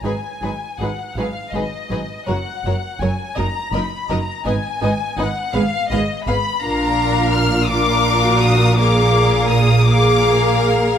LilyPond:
<<
  \new Staff \with { instrumentName = "Violin section" } { \time 6/8 \key bes \phrygian \tempo 4. = 55 aes''4 ges''8 f''8 ees''4 | ges''4 aes''8 bes''8 ces'''8 bes''8 | aes''4 ges''8 f''8 ees''8 ces'''8 | bes''4 f'''8 d'''4 ees'''8 |
d'''4 ees'''8 d'''4 r8 | }
  \new Staff \with { instrumentName = "Violin section" } { \time 6/8 \key bes \phrygian <aes' ces''>8 <aes' ces''>8 <aes' ces''>8 <aes' ces''>8 <aes' ces''>8 <aes' ces''>8 | <bes' des''>8 <bes' des''>8 <bes' des''>8 <bes' ees''>8 <bes' ees''>8 <bes' ees''>8 | <ces'' ees''>8 <ces'' ees''>8 <ces'' ees''>8 <ces'' f''>8 <ces'' f''>8 <ces'' f''>8 | <bes' f''>4. <bes' f''>4. |
<bes' f''>4. <bes' f''>4. | }
  \new Staff \with { instrumentName = "Viola section" } { \time 6/8 \key bes \phrygian << { ees'8 ees'8 ees'8 ees'8 ees'8 ees'8 | ges'8 ges'8 ges'8 ees'8 ees'8 ees'8 | ees'8 ees'8 ees'8 aes'8 aes'8 aes'8 | f'4. f'8. ges'8. |
aes'4. aes'4. | } \\ { ges8 ges8 ges8 ges8 ges8 ges8 | ges8 ges8 ges8 ges8 ges8 ges8 | ces'8 ces'8 ces'8 ces'8 ces'8 ces'8 | d'4. d'4. |
bes4. bes4. | } >> }
  \new Staff \with { instrumentName = "Cello section" } { \clef bass \time 6/8 \key bes \phrygian aes,8 aes,8 aes,8 aes,8 aes,8 aes,8 | ges,8 ges,8 ges,8 ges,8 ges,8 ges,8 | aes,8 aes,8 aes,8 aes,8 aes,8 aes,8 | bes,2.~ |
bes,2. | }
  \new Staff \with { instrumentName = "Double bass section" } { \clef bass \time 6/8 \key bes \phrygian aes,,8 aes,,8 aes,,8 aes,,8 aes,,8 aes,,8 | ges,,8 ges,,8 ges,,8 ges,,8 ges,,8 ges,,8 | aes,,8 aes,,8 aes,,8 aes,,8 aes,,8 aes,,8 | bes,,2.~ |
bes,,2. | }
>>